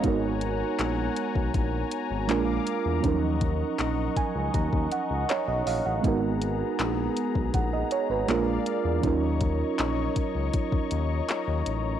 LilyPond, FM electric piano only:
\new Staff \with { instrumentName = "FM electric piano" } { \time 4/4 \key gis \dorian \tempo 4 = 80 << { dis''16 r2. r8. | r4. gis''8 ais''8 fis''8 <cis'' dis''>16 dis''16 <dis'' eis''>16 fis''16~ | fis''16 r4. r16 fis''16 dis''16 cis''16 b'8 r8. | r1 | } \\ { <gis b dis' fis' ais'>2. <gis ais d' eis' ais'>4 | <eis fis cis' dis' ais'>1 | <gis b dis' fis' ais'>2. <gis ais d' eis' ais'>4 | <fis cis' dis' eis' ais'>1 | } >> }